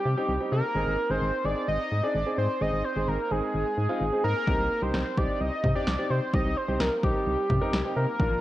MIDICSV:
0, 0, Header, 1, 5, 480
1, 0, Start_track
1, 0, Key_signature, -3, "minor"
1, 0, Tempo, 465116
1, 777, Time_signature, 4, 2, 24, 8
1, 8678, End_track
2, 0, Start_track
2, 0, Title_t, "Analog synth lead"
2, 0, Program_c, 0, 81
2, 0, Note_on_c, 0, 67, 102
2, 532, Note_off_c, 0, 67, 0
2, 538, Note_on_c, 0, 70, 104
2, 1139, Note_on_c, 0, 72, 103
2, 1154, Note_off_c, 0, 70, 0
2, 1497, Note_on_c, 0, 74, 102
2, 1513, Note_off_c, 0, 72, 0
2, 1730, Note_off_c, 0, 74, 0
2, 1736, Note_on_c, 0, 75, 108
2, 2096, Note_on_c, 0, 74, 106
2, 2112, Note_off_c, 0, 75, 0
2, 2451, Note_off_c, 0, 74, 0
2, 2458, Note_on_c, 0, 72, 92
2, 2698, Note_on_c, 0, 75, 102
2, 2713, Note_off_c, 0, 72, 0
2, 2936, Note_on_c, 0, 72, 97
2, 2951, Note_off_c, 0, 75, 0
2, 3176, Note_on_c, 0, 70, 92
2, 3191, Note_off_c, 0, 72, 0
2, 3416, Note_on_c, 0, 68, 102
2, 3431, Note_off_c, 0, 70, 0
2, 4369, Note_off_c, 0, 68, 0
2, 4375, Note_on_c, 0, 70, 99
2, 4976, Note_on_c, 0, 72, 98
2, 4992, Note_off_c, 0, 70, 0
2, 5337, Note_on_c, 0, 74, 93
2, 5353, Note_off_c, 0, 72, 0
2, 5574, Note_on_c, 0, 75, 103
2, 5589, Note_off_c, 0, 74, 0
2, 5932, Note_off_c, 0, 75, 0
2, 5939, Note_on_c, 0, 74, 102
2, 6297, Note_on_c, 0, 72, 91
2, 6313, Note_off_c, 0, 74, 0
2, 6538, Note_on_c, 0, 75, 101
2, 6554, Note_off_c, 0, 72, 0
2, 6777, Note_on_c, 0, 72, 94
2, 6793, Note_off_c, 0, 75, 0
2, 7018, Note_on_c, 0, 70, 90
2, 7033, Note_off_c, 0, 72, 0
2, 7254, Note_off_c, 0, 70, 0
2, 7260, Note_on_c, 0, 67, 92
2, 8177, Note_off_c, 0, 67, 0
2, 8218, Note_on_c, 0, 70, 97
2, 8678, Note_off_c, 0, 70, 0
2, 8678, End_track
3, 0, Start_track
3, 0, Title_t, "Grand piano"
3, 0, Program_c, 1, 0
3, 180, Note_on_c, 1, 63, 71
3, 180, Note_on_c, 1, 67, 89
3, 181, Note_on_c, 1, 60, 79
3, 313, Note_off_c, 1, 60, 0
3, 313, Note_off_c, 1, 63, 0
3, 313, Note_off_c, 1, 67, 0
3, 418, Note_on_c, 1, 63, 62
3, 418, Note_on_c, 1, 67, 76
3, 419, Note_on_c, 1, 60, 69
3, 619, Note_off_c, 1, 60, 0
3, 619, Note_off_c, 1, 63, 0
3, 619, Note_off_c, 1, 67, 0
3, 778, Note_on_c, 1, 60, 70
3, 778, Note_on_c, 1, 68, 76
3, 779, Note_on_c, 1, 63, 62
3, 979, Note_off_c, 1, 60, 0
3, 979, Note_off_c, 1, 63, 0
3, 979, Note_off_c, 1, 68, 0
3, 1138, Note_on_c, 1, 68, 77
3, 1139, Note_on_c, 1, 60, 69
3, 1139, Note_on_c, 1, 63, 65
3, 1339, Note_off_c, 1, 60, 0
3, 1339, Note_off_c, 1, 63, 0
3, 1339, Note_off_c, 1, 68, 0
3, 1498, Note_on_c, 1, 60, 73
3, 1498, Note_on_c, 1, 63, 66
3, 1498, Note_on_c, 1, 68, 75
3, 1833, Note_off_c, 1, 60, 0
3, 1833, Note_off_c, 1, 63, 0
3, 1833, Note_off_c, 1, 68, 0
3, 2096, Note_on_c, 1, 63, 62
3, 2096, Note_on_c, 1, 68, 74
3, 2097, Note_on_c, 1, 60, 70
3, 2231, Note_off_c, 1, 60, 0
3, 2231, Note_off_c, 1, 63, 0
3, 2231, Note_off_c, 1, 68, 0
3, 2336, Note_on_c, 1, 68, 79
3, 2337, Note_on_c, 1, 60, 71
3, 2337, Note_on_c, 1, 63, 63
3, 2538, Note_off_c, 1, 63, 0
3, 2538, Note_off_c, 1, 68, 0
3, 2539, Note_off_c, 1, 60, 0
3, 2694, Note_on_c, 1, 60, 69
3, 2694, Note_on_c, 1, 63, 62
3, 2694, Note_on_c, 1, 68, 76
3, 2897, Note_off_c, 1, 60, 0
3, 2897, Note_off_c, 1, 63, 0
3, 2897, Note_off_c, 1, 68, 0
3, 3054, Note_on_c, 1, 60, 71
3, 3055, Note_on_c, 1, 63, 64
3, 3055, Note_on_c, 1, 68, 75
3, 3257, Note_off_c, 1, 60, 0
3, 3257, Note_off_c, 1, 63, 0
3, 3257, Note_off_c, 1, 68, 0
3, 3414, Note_on_c, 1, 60, 70
3, 3414, Note_on_c, 1, 63, 63
3, 3415, Note_on_c, 1, 68, 77
3, 3751, Note_off_c, 1, 60, 0
3, 3751, Note_off_c, 1, 63, 0
3, 3752, Note_off_c, 1, 68, 0
3, 4015, Note_on_c, 1, 60, 80
3, 4015, Note_on_c, 1, 63, 76
3, 4016, Note_on_c, 1, 65, 91
3, 4150, Note_off_c, 1, 60, 0
3, 4150, Note_off_c, 1, 63, 0
3, 4151, Note_off_c, 1, 65, 0
3, 4258, Note_on_c, 1, 60, 69
3, 4258, Note_on_c, 1, 68, 75
3, 4259, Note_on_c, 1, 63, 65
3, 4459, Note_off_c, 1, 60, 0
3, 4459, Note_off_c, 1, 63, 0
3, 4459, Note_off_c, 1, 68, 0
3, 4617, Note_on_c, 1, 60, 68
3, 4617, Note_on_c, 1, 63, 61
3, 4617, Note_on_c, 1, 67, 77
3, 4818, Note_off_c, 1, 67, 0
3, 4819, Note_off_c, 1, 60, 0
3, 4819, Note_off_c, 1, 63, 0
3, 4977, Note_on_c, 1, 63, 65
3, 4978, Note_on_c, 1, 67, 78
3, 4979, Note_on_c, 1, 60, 68
3, 5178, Note_off_c, 1, 63, 0
3, 5179, Note_off_c, 1, 60, 0
3, 5179, Note_off_c, 1, 67, 0
3, 5338, Note_on_c, 1, 60, 70
3, 5338, Note_on_c, 1, 67, 75
3, 5339, Note_on_c, 1, 63, 64
3, 5673, Note_off_c, 1, 60, 0
3, 5673, Note_off_c, 1, 63, 0
3, 5673, Note_off_c, 1, 67, 0
3, 5936, Note_on_c, 1, 60, 69
3, 5936, Note_on_c, 1, 63, 61
3, 5936, Note_on_c, 1, 67, 77
3, 6071, Note_off_c, 1, 60, 0
3, 6071, Note_off_c, 1, 63, 0
3, 6071, Note_off_c, 1, 67, 0
3, 6178, Note_on_c, 1, 60, 71
3, 6178, Note_on_c, 1, 63, 65
3, 6179, Note_on_c, 1, 67, 75
3, 6379, Note_off_c, 1, 60, 0
3, 6379, Note_off_c, 1, 63, 0
3, 6379, Note_off_c, 1, 67, 0
3, 6538, Note_on_c, 1, 60, 67
3, 6538, Note_on_c, 1, 63, 61
3, 6538, Note_on_c, 1, 67, 75
3, 6739, Note_off_c, 1, 60, 0
3, 6739, Note_off_c, 1, 63, 0
3, 6739, Note_off_c, 1, 67, 0
3, 6896, Note_on_c, 1, 60, 71
3, 6896, Note_on_c, 1, 63, 64
3, 6896, Note_on_c, 1, 67, 75
3, 7098, Note_off_c, 1, 60, 0
3, 7098, Note_off_c, 1, 63, 0
3, 7098, Note_off_c, 1, 67, 0
3, 7256, Note_on_c, 1, 60, 70
3, 7256, Note_on_c, 1, 63, 65
3, 7256, Note_on_c, 1, 67, 79
3, 7592, Note_off_c, 1, 60, 0
3, 7592, Note_off_c, 1, 63, 0
3, 7592, Note_off_c, 1, 67, 0
3, 7856, Note_on_c, 1, 70, 91
3, 7857, Note_on_c, 1, 60, 83
3, 7858, Note_on_c, 1, 63, 76
3, 7991, Note_off_c, 1, 60, 0
3, 7991, Note_off_c, 1, 70, 0
3, 7992, Note_off_c, 1, 63, 0
3, 8098, Note_on_c, 1, 60, 71
3, 8098, Note_on_c, 1, 67, 77
3, 8099, Note_on_c, 1, 63, 64
3, 8299, Note_off_c, 1, 60, 0
3, 8299, Note_off_c, 1, 63, 0
3, 8299, Note_off_c, 1, 67, 0
3, 8456, Note_on_c, 1, 58, 70
3, 8456, Note_on_c, 1, 62, 64
3, 8456, Note_on_c, 1, 65, 77
3, 8658, Note_off_c, 1, 58, 0
3, 8658, Note_off_c, 1, 62, 0
3, 8658, Note_off_c, 1, 65, 0
3, 8678, End_track
4, 0, Start_track
4, 0, Title_t, "FM bass"
4, 0, Program_c, 2, 39
4, 57, Note_on_c, 2, 48, 100
4, 159, Note_off_c, 2, 48, 0
4, 295, Note_on_c, 2, 36, 96
4, 398, Note_off_c, 2, 36, 0
4, 537, Note_on_c, 2, 48, 93
4, 639, Note_off_c, 2, 48, 0
4, 775, Note_on_c, 2, 32, 101
4, 877, Note_off_c, 2, 32, 0
4, 897, Note_on_c, 2, 32, 90
4, 999, Note_off_c, 2, 32, 0
4, 1135, Note_on_c, 2, 32, 93
4, 1238, Note_off_c, 2, 32, 0
4, 1256, Note_on_c, 2, 32, 105
4, 1358, Note_off_c, 2, 32, 0
4, 1495, Note_on_c, 2, 32, 93
4, 1598, Note_off_c, 2, 32, 0
4, 1736, Note_on_c, 2, 32, 99
4, 1838, Note_off_c, 2, 32, 0
4, 1977, Note_on_c, 2, 44, 93
4, 2079, Note_off_c, 2, 44, 0
4, 2215, Note_on_c, 2, 32, 99
4, 2318, Note_off_c, 2, 32, 0
4, 2456, Note_on_c, 2, 44, 97
4, 2558, Note_off_c, 2, 44, 0
4, 2696, Note_on_c, 2, 32, 103
4, 2798, Note_off_c, 2, 32, 0
4, 2816, Note_on_c, 2, 32, 88
4, 2918, Note_off_c, 2, 32, 0
4, 3056, Note_on_c, 2, 32, 92
4, 3158, Note_off_c, 2, 32, 0
4, 3175, Note_on_c, 2, 32, 106
4, 3278, Note_off_c, 2, 32, 0
4, 3415, Note_on_c, 2, 32, 100
4, 3518, Note_off_c, 2, 32, 0
4, 3655, Note_on_c, 2, 32, 101
4, 3757, Note_off_c, 2, 32, 0
4, 3896, Note_on_c, 2, 44, 92
4, 3998, Note_off_c, 2, 44, 0
4, 4135, Note_on_c, 2, 32, 96
4, 4238, Note_off_c, 2, 32, 0
4, 4378, Note_on_c, 2, 44, 97
4, 4480, Note_off_c, 2, 44, 0
4, 4617, Note_on_c, 2, 36, 105
4, 4719, Note_off_c, 2, 36, 0
4, 4738, Note_on_c, 2, 36, 88
4, 4839, Note_off_c, 2, 36, 0
4, 4977, Note_on_c, 2, 36, 100
4, 5078, Note_off_c, 2, 36, 0
4, 5097, Note_on_c, 2, 36, 101
4, 5198, Note_off_c, 2, 36, 0
4, 5339, Note_on_c, 2, 36, 94
4, 5440, Note_off_c, 2, 36, 0
4, 5578, Note_on_c, 2, 36, 96
4, 5679, Note_off_c, 2, 36, 0
4, 5816, Note_on_c, 2, 48, 98
4, 5918, Note_off_c, 2, 48, 0
4, 6059, Note_on_c, 2, 36, 98
4, 6160, Note_off_c, 2, 36, 0
4, 6299, Note_on_c, 2, 48, 88
4, 6400, Note_off_c, 2, 48, 0
4, 6537, Note_on_c, 2, 36, 112
4, 6639, Note_off_c, 2, 36, 0
4, 6660, Note_on_c, 2, 36, 94
4, 6760, Note_off_c, 2, 36, 0
4, 6898, Note_on_c, 2, 36, 104
4, 6999, Note_off_c, 2, 36, 0
4, 7018, Note_on_c, 2, 36, 103
4, 7119, Note_off_c, 2, 36, 0
4, 7258, Note_on_c, 2, 36, 99
4, 7359, Note_off_c, 2, 36, 0
4, 7497, Note_on_c, 2, 36, 98
4, 7599, Note_off_c, 2, 36, 0
4, 7737, Note_on_c, 2, 48, 95
4, 7839, Note_off_c, 2, 48, 0
4, 7976, Note_on_c, 2, 36, 103
4, 8078, Note_off_c, 2, 36, 0
4, 8219, Note_on_c, 2, 48, 101
4, 8320, Note_off_c, 2, 48, 0
4, 8458, Note_on_c, 2, 34, 104
4, 8560, Note_off_c, 2, 34, 0
4, 8577, Note_on_c, 2, 34, 92
4, 8678, Note_off_c, 2, 34, 0
4, 8678, End_track
5, 0, Start_track
5, 0, Title_t, "Drums"
5, 4618, Note_on_c, 9, 36, 108
5, 4721, Note_off_c, 9, 36, 0
5, 5098, Note_on_c, 9, 38, 102
5, 5201, Note_off_c, 9, 38, 0
5, 5338, Note_on_c, 9, 36, 94
5, 5442, Note_off_c, 9, 36, 0
5, 5817, Note_on_c, 9, 36, 87
5, 5818, Note_on_c, 9, 45, 85
5, 5920, Note_off_c, 9, 36, 0
5, 5922, Note_off_c, 9, 45, 0
5, 6058, Note_on_c, 9, 38, 100
5, 6162, Note_off_c, 9, 38, 0
5, 6537, Note_on_c, 9, 36, 112
5, 6641, Note_off_c, 9, 36, 0
5, 7019, Note_on_c, 9, 38, 99
5, 7122, Note_off_c, 9, 38, 0
5, 7258, Note_on_c, 9, 36, 95
5, 7361, Note_off_c, 9, 36, 0
5, 7737, Note_on_c, 9, 36, 86
5, 7739, Note_on_c, 9, 45, 85
5, 7840, Note_off_c, 9, 36, 0
5, 7842, Note_off_c, 9, 45, 0
5, 7980, Note_on_c, 9, 38, 101
5, 8083, Note_off_c, 9, 38, 0
5, 8458, Note_on_c, 9, 36, 110
5, 8562, Note_off_c, 9, 36, 0
5, 8678, End_track
0, 0, End_of_file